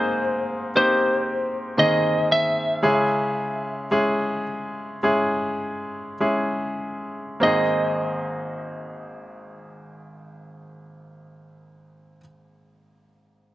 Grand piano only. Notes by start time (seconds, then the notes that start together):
Already playing: G#2 A#3 C4 D#4 G#4
0.75 A#3 C4 D#4 G4
1.77 D#3 A#3 C4 G#4
2.83 C#3 G#3 C#4 E4 G#4
3.91 G#3 C#4 E4 G#4
5.03 G#3 C#4 E4 G#4
6.20 G#3 C#4 E4 G#4
7.40 G#1 A#3 C4 D#4 G#4